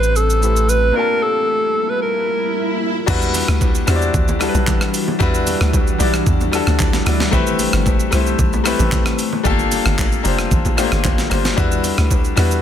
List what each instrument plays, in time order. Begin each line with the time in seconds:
Already playing: sub bass A1, grand piano A3 C4 E4 G4 C5, ambient pad A3 C4 G4, alto saxophone B4
0.03 shaker
0.16 alto saxophone A4, shaker
0.30 shaker
0.41 grand piano A3 C4 E4 G4 B4, shaker
0.51 grand piano C5
0.56 shaker
0.69 alto saxophone B4, shaker
0.92 ambient pad G3 A#3 F4 A5, grand piano A#3 D4 F4, swell
0.96 grand piano G4 A5, alto saxophone A#4
1.23 alto saxophone A4
1.90 alto saxophone B4
2.02 alto saxophone A#4
3.06 log drum bass E2, ambient pad E3 G3 D4 F#4, grand piano F#3 D4 E4 F#4 B4, kick, crash, low conga, shaker
3.13 grand piano G3
3.22 shaker
3.34 open hi-hat, low bongo, shaker
3.48 log drum bass D2, cross-stick, shaker
3.61 kick, high bongo, shaker
3.75 shaker
3.86 log drum bass E2, grand piano G3 D4 E4 F#4 C5, cross-stick, open hi-hat, shaker
3.96 grand piano D5
4.02 shaker
4.14 log drum bass D2, kick, low conga, shaker
4.28 low bongo, shaker
4.39 grand piano G3 D4 E4 F#4 A4, cross-stick, open hi-hat, shaker
4.49 grand piano B4
4.55 log drum bass B1, low bongo, shaker
4.67 kick, clap, high bongo, low conga, shaker
4.81 cross-stick, shaker
4.94 open hi-hat, shaker
5.08 low bongo
5.19 log drum bass E2, grand piano G3 D4 E4 F#4 B4, kick, low conga, shaker
5.34 shaker
5.47 open hi-hat, low bongo, shaker
5.61 log drum bass D2, cross-stick, shaker
5.73 kick, high bongo, shaker
5.87 shaker
5.98 log drum bass B1, grand piano G3 D4 E4 F#4 D5, open hi-hat, shaker
6.14 cross-stick, shaker
6.27 log drum bass E2, kick, low conga, shaker
6.40 low bongo, shaker
6.51 grand piano G3 D4 E4 F#4 A4, cross-stick, open hi-hat, shaker
6.67 log drum bass D2, cross-stick, low bongo, shaker
6.79 kick, clap, high bongo, low conga, shaker
6.93 snare, shaker
7.05 log drum bass D2, grand piano G3 D4 E4 F#4 D5, cross-stick, open hi-hat, shaker
7.20 snare, low bongo
7.31 log drum bass A1, grand piano A3 C4 E4 G4 B4, ambient pad A3 C4, kick, low conga, shaker
7.47 shaker
7.59 open hi-hat, low bongo, shaker
7.73 log drum bass G1, cross-stick, shaker
7.86 kick, high bongo, shaker
8.00 shaker
8.11 log drum bass C2, grand piano A3 C4 E4 G4 C5, cross-stick, open hi-hat, shaker
8.26 shaker
8.39 log drum bass B1, kick, low conga, shaker
8.53 low bongo, shaker
8.64 grand piano A3 C4 E4 G4 B4, cross-stick, open hi-hat, shaker
8.79 log drum bass A1, low bongo, shaker
8.92 kick, clap, high bongo, low conga, shaker
9.06 cross-stick, shaker
9.19 open hi-hat, shaker
9.33 low bongo
9.43 log drum bass G1, ambient pad G3 A#3 F4 A4, grand piano A3 D4 F4 G4 A4, kick, low conga, shaker
9.50 grand piano A#3
9.59 high bongo, shaker
9.72 open hi-hat, low bongo, shaker
9.85 log drum bass G1, cross-stick, shaker
9.98 kick, clap, high bongo, shaker
10.12 shaker
10.23 log drum bass F1, grand piano A#3 D4 F4 G4 C5, open hi-hat, shaker
10.39 cross-stick, shaker
10.51 log drum bass A1, kick, low conga, shaker
10.65 kick, low bongo, shaker
10.76 grand piano A3 D4 F4 G4 C5, cross-stick, open hi-hat, shaker
10.83 grand piano A#3
10.92 log drum bass G1, cross-stick, low bongo, shaker
11.04 kick, clap, high bongo, low conga, shaker
11.18 snare, shaker
11.29 log drum bass G1, grand piano A#3 D4 F4 G4 C5, cross-stick, open hi-hat, high bongo, shaker
11.45 snare, low bongo, shaker
11.56 log drum bass E2, ambient pad E3 G3 D4 F#4, grand piano G3 D4 E4 F#4 B4, kick, low conga, shaker
11.72 shaker
11.84 open hi-hat, low bongo, shaker
11.98 log drum bass D2, cross-stick, shaker
12.11 kick, high bongo, shaker
12.24 shaker
12.36 log drum bass E2, grand piano G3 D4 E4 F#4 B4, cross-stick, open hi-hat, shaker
12.51 shaker